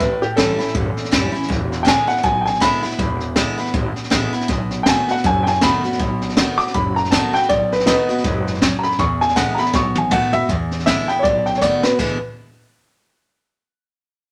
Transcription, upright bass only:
0.00 0.15 A1 medium
0.23 muted upright bass stroke medium
0.38 0.57 A1 medium
0.59 muted upright bass stroke medium
0.75 0.94 G1 medium
0.97 muted upright bass stroke medium
1.12 1.31 F#1 medium
1.35 muted upright bass stroke medium
1.50 1.91 E1 loud
2.10 muted upright bass stroke medium
2.24 2.66 B1 medium
2.84 muted upright bass stroke medium
2.99 3.41 E1 loud
3.59 muted upright bass stroke medium
3.74 3.93 G#1 medium
4.11 4.30 A1 medium
4.34 muted upright bass stroke medium
4.49 4.91 B1 medium
5.09 muted upright bass stroke medium
5.25 5.66 F#1 medium
5.85 muted upright bass stroke medium
5.99 6.41 B1 medium
6.59 muted upright bass stroke medium
6.74 7.16 F#1 medium
7.34 muted upright bass stroke medium
7.49 7.91 B1 medium
8.09 muted upright bass stroke medium
8.24 8.66 F#1 medium
8.85 muted upright bass stroke medium
8.99 9.41 E2 loud
9.59 muted upright bass stroke medium
9.74 10.15 B1 loud
10.33 muted upright bass stroke medium
10.49 10.91 E2 medium
11.09 muted upright bass stroke medium
11.24 11.66 B1 loud
11.84 muted upright bass stroke medium

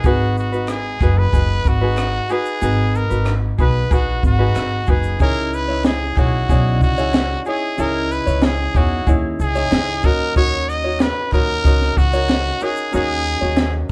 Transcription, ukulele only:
0.04 0.53 D#4 medium
0.04 0.52 F#4 medium
0.04 0.53 G#4 medium
0.04 0.51 B4 medium
0.52 1.00 D#4 soft
0.52 1.01 F#4 medium
0.52 1.01 B4 soft
1.01 1.32 D#4 medium
1.01 1.33 F#4 medium
1.01 1.32 G#4 medium
1.01 1.34 B4 medium
1.33 1.81 D#4 medium
1.33 1.80 F#4 medium
1.33 1.81 G#4 soft
1.33 1.80 B4 medium
1.81 2.29 D#4 medium
1.81 2.30 F#4 medium
1.81 2.28 G#4 soft
1.81 2.30 B4 medium
2.30 2.61 D#4 medium
2.30 2.61 F#4 medium
2.30 2.60 G#4 medium
2.30 2.62 B4 medium
2.61 3.11 D#4 medium
2.61 3.10 F#4 medium
2.61 3.10 G#4 medium
2.61 3.09 B4 medium
3.10 3.58 D#4 soft
3.10 3.59 F#4 soft
3.10 3.59 B4 soft
3.58 3.90 D#4 medium
3.58 3.91 F#4 medium
3.58 3.89 G#4 medium
3.58 3.91 B4 medium
3.90 4.38 D#4 medium
3.90 4.38 F#4 medium
3.90 4.39 G#4 medium
3.90 4.38 B4 medium
4.39 4.87 D#4 medium
4.39 4.88 F#4 medium
4.39 4.86 G#4 medium
4.39 4.88 B4 medium
4.87 5.20 D#4 medium
4.87 5.21 F#4 medium
4.87 5.19 G#4 medium
4.87 5.21 B4 medium
5.20 5.69 D#4 medium
5.20 5.68 E4 medium
5.20 5.69 G#4 medium
5.20 5.67 C#5 medium
5.68 6.16 D#4 soft
5.68 6.17 E4 soft
5.68 6.17 C#5 soft
6.16 6.49 D#4 medium
6.16 6.49 E4 medium
6.16 6.48 G#4 medium
6.16 6.50 C#5 medium
6.49 6.98 D#4 medium
6.49 6.97 E4 medium
6.49 6.98 G#4 medium
6.49 6.97 C#5 medium
6.98 7.45 D#4 medium
6.98 7.46 E4 medium
6.98 7.45 G#4 medium
6.98 7.46 C#5 medium
7.46 7.77 D#4 medium
7.46 7.78 E4 medium
7.46 7.77 G#4 medium
7.46 7.79 C#5 medium
7.78 8.27 D#4 medium
7.78 8.26 E4 medium
7.78 8.27 G#4 medium
7.78 8.25 C#5 medium
8.26 8.74 D#4 soft
8.26 8.75 E4 soft
8.26 8.75 C#5 medium
8.74 9.07 D#4 medium
8.74 9.07 E4 medium
8.74 9.05 G#4 medium
8.74 9.08 C#5 medium
9.07 9.55 D#4 medium
9.07 9.55 E4 medium
9.07 9.55 G#4 medium
9.07 9.54 C#5 medium
9.55 10.03 D#4 medium
9.55 10.04 E4 medium
9.55 10.03 G#4 soft
9.55 10.04 C#5 medium
10.04 10.35 D#4 medium
10.04 10.36 F#4 medium
10.04 10.35 A#4 medium
10.04 10.36 C#5 medium
10.36 10.85 D#4 medium
10.36 10.84 F#4 medium
10.36 10.84 A#4 medium
10.36 10.83 C#5 medium
10.84 11.32 D#4 soft
10.84 11.33 F#4 medium
10.84 11.33 C#5 medium
11.32 11.64 D#4 medium
11.32 11.65 F#4 medium
11.32 11.63 A#4 medium
11.32 11.66 C#5 medium
11.65 12.13 D#4 medium
11.65 12.13 F#4 medium
11.65 12.13 A#4 medium
11.65 12.12 C#5 medium
12.13 12.61 D#4 medium
12.13 12.62 F#4 soft
12.13 12.60 A#4 soft
12.13 12.62 C#5 medium
12.61 12.92 D#4 medium
12.61 12.93 F#4 medium
12.61 12.92 A#4 medium
12.61 12.93 C#5 medium
12.93 13.42 D#4 medium
12.93 13.41 F#4 medium
12.93 13.42 A#4 medium
12.93 13.40 C#5 medium
13.41 13.89 D#4 soft
13.41 13.89 F#4 soft
13.41 13.90 C#5 medium

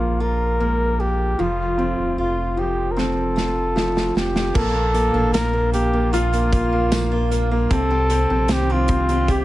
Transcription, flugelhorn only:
0.00 0.23 F4 medium
0.21 1.02 A#4 medium
1.00 1.42 G4 medium
1.40 2.19 F4 medium
2.19 2.61 F4 medium
2.59 2.93 G4 medium
2.91 3.01 A#4 medium
2.99 4.16 A4 medium
4.17 4.57 G4 medium
4.55 5.33 A4 medium
5.33 5.70 A#4 loud
5.73 6.14 G4 medium
6.12 7.31 F4 medium
7.71 8.54 A4 loud
8.52 8.74 G4 medium
8.72 9.33 F4 medium
9.32 9.45 G4 medium

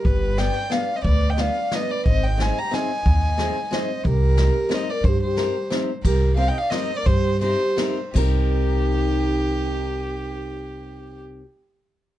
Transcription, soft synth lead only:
0.08 0.40 G4 medium
0.39 0.72 D5 medium
0.72 0.98 D5 medium
0.96 1.05 C5 medium
1.06 1.34 B4 medium
1.33 1.42 D#5 medium
1.40 1.77 D5 medium
1.75 1.93 B4 medium
1.93 2.07 B4 medium
2.08 2.28 C5 medium
2.27 2.43 D#5 medium
2.43 2.61 D#5 medium
2.59 2.76 G5 medium
2.75 3.74 D#5 medium
3.73 4.05 C5 medium
4.06 4.75 G4 medium
4.73 4.93 C5 medium
4.92 5.10 A#4 medium
5.08 5.24 G4 medium
5.26 5.87 G4 medium
6.05 6.36 G4 medium
6.38 6.52 C5 medium
6.50 6.63 D#5 medium
6.61 6.73 D5 medium
6.71 7.00 C5 medium
6.98 7.08 A#4 medium
7.07 7.42 G4 medium
7.43 7.94 G4 medium
8.18 11.22 D#4 medium

